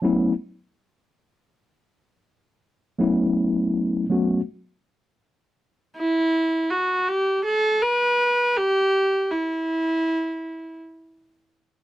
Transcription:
0.02 F#3 A3 B3 C#4 E4
2.98 F#3 A3 B3 C#4 E4
4.10 F#3 A3 B3 C#4 F#4
5.97 E4
6.71 F#4
7.08 G4
7.45 A4
7.82 B4
8.57 G4
9.31 E4

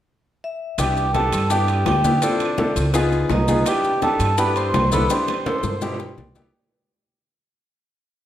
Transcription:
0.44 E5
0.78 C2 B3 D4 E4 G4 G5, high bongo, high conga, high timbale, maracas
0.97 high bongo, high conga, maracas
1.14 B3 D4 E4 G4 A4 A5, high bongo, high conga, high timbale, low timbale, maracas
1.32 G2, high bongo, high conga, high timbale, maracas
1.50 B3 D4 E4 G4 G5, high bongo, high conga, maracas
1.68 high conga, high timbale, maracas
1.86 D2 G4 G5, high bongo, low bongo, high conga, high timbale, low timbale, maracas
2.04 B3 D4 E4 G4, high bongo, high conga, maracas
2.22 C4 D4 E4 F4 A4 D5, high bongo, high conga, high timbale, maracas
2.40 high bongo, high conga, high timbale, maracas
2.58 C4 E4 F4 A4, high bongo, high conga, low timbale, maracas
2.76 C#2, high bongo, high conga, high timbale, maracas
2.94 B3 D#4 F4 G#4, high bongo, high conga, high timbale, maracas
3.12 high bongo, high conga, maracas
3.30 C2 D#4 D#5, high bongo, low bongo, high conga, high timbale, low timbale, maracas
3.48 B3 D#4 F4 G#4, high conga, maracas
3.66 B3 D4 E4 G4 G5, high bongo, high conga, high timbale, maracas
3.84 high bongo, high conga, maracas
4.02 B3 D4 E4 G4 A4 A5, high bongo, high conga, high timbale, low timbale, maracas
4.20 G2, high bongo, high conga, high timbale, maracas
4.38 B3 D4 E4 G4 B4 B5, high bongo, high conga, maracas
4.56 C5 C6, high conga, high timbale, maracas
4.73 C2, high bongo, low bongo, high conga, high timbale, low timbale, maracas
4.92 B3 D4 E4 A4 B4 B5, high bongo, high conga, maracas
5.10 B3 D4 E4 G4 C5 C6, high bongo, high conga, high timbale, maracas
5.28 high bongo, high conga, high timbale, maracas
5.46 B3 D4 E4 A4, high bongo, high conga, high timbale, maracas
5.58 high timbale
5.63 G2, low bongo, high conga, maracas
5.81 B2 D4 E4 G4, low bongo, high conga, low timbale, maracas
5.94 low timbale
5.99 G5, low bongo, high conga, maracas
6.06 low timbale
6.17 C2 D5, low bongo, high conga, maracas
6.35 B3 D4 E4 G4, low bongo, high conga, maracas
6.42 low timbale

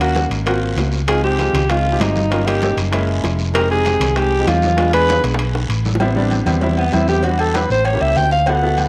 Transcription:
Already playing: D#2
0.00 A#3 C#4 F#4 F5, high bongo, high timbale
0.15 high bongo, high conga, short guiro
0.30 G#1, high conga, high timbale, short guiro
0.46 A#3 C4 F4 F#4, high bongo, high conga, high timbale, long guiro
0.62 high bongo, high conga
0.76 C#2, high bongo, low bongo, high conga, high timbale, low timbale, short guiro
0.92 high bongo, short guiro
1.08 G#3 C4 D#4 F4 G#4, high bongo, high conga, high timbale, long guiro
1.23 G#3 C4 D#4 G4, high bongo, high conga
1.38 G#3 C4 D#4 F4, high bongo, high conga, high timbale, short guiro
1.53 C#2, high conga, low conga, high timbale, short guiro
1.69 G#3 C4 D#4 F4, high bongo, high conga, high timbale, long guiro
1.85 high bongo, high conga
1.92 G#3 C4 D#4 G4
2.00 G1 D#4, high bongo, low bongo, high conga, high timbale, low timbale, short guiro
2.16 high bongo, high conga, short guiro
2.30 G3 A#3 C#4 F4, high bongo, high timbale, long guiro
2.46 G3 A#3 C#4 D#4 G4, high bongo, high conga, high timbale
2.62 high bongo, high conga, short guiro
2.77 F#1, high conga, high timbale, short guiro
2.92 G#3 A#3 C#4 E4, high bongo, high conga, high timbale, long guiro
3.08 high bongo, high conga
3.23 F1, high bongo, low bongo, high conga, high timbale, short guiro
3.39 high bongo, short guiro
3.54 G#3 C4 D#4 G4 A#4, high bongo, high conga, high timbale, long guiro
3.70 G#3 C4 D#4 G4 G#4, high bongo, high conga
3.85 G#3 C4 D#4 G4, high bongo, high conga, high timbale, short guiro
4.00 C2, high conga, low conga, high timbale, short guiro
4.16 G#3 C4 D#4 G4 G#4, high bongo, high conga, high timbale, long guiro
4.32 high bongo, high conga
4.39 G#3 C4 D#4 G4
4.47 E2 F4, high bongo, low bongo, high conga, high timbale, short guiro
4.62 high bongo, high conga, short guiro
4.77 G#3 B3 D4 F4, high bongo, high conga, high timbale, long guiro
4.93 G#3 B3 D4 G#4 B4, high bongo, high timbale
5.08 high bongo, high conga, short guiro
5.23 B1, high bongo, high timbale, short guiro
5.34 high bongo
5.39 high conga, high timbale, long guiro
5.55 high bongo, high conga
5.69 A1, high conga, high timbale, short guiro
5.85 high conga, short guiro
5.95 low bongo
6.00 G3 B3 C4 E4, cowbell, high conga, low agogo, long guiro
6.16 G3 B3 C4 D4, high conga
6.31 cowbell, high conga, low agogo, short guiro
6.46 E2 G3 B3 C4 E4, cowbell, high conga, low conga, low agogo, short guiro
6.61 G3 B3 C4 E4, cowbell, high conga, low conga, long guiro
6.78 B3, high conga, low agogo
6.92 E2 G3 B3 C4 E4, cowbell, high conga, low agogo, short guiro
7.07 G3 B3 C4 G4, high conga, short guiro
7.23 G3 B3 D4 F#4, cowbell, low agogo, long guiro
7.39 A4, high conga, low agogo
7.54 B4, cowbell, high conga, low agogo, short guiro
7.70 A1 C5, high conga, short guiro
7.85 C#5, cowbell, high conga, low agogo, long guiro
7.93 A#3 C#4 E4 G4
8.00 C#2 E5, high conga, low agogo
8.16 D2 G5, cowbell, high conga, low timbale, short guiro
8.31 F5, cowbell, short guiro
8.46 B3 E4 F#4 A4 F#5, cowbell, high conga, low agogo, long guiro
8.62 B3 E4 F#4 A4, high conga
8.78 cowbell, high conga, low agogo, short guiro

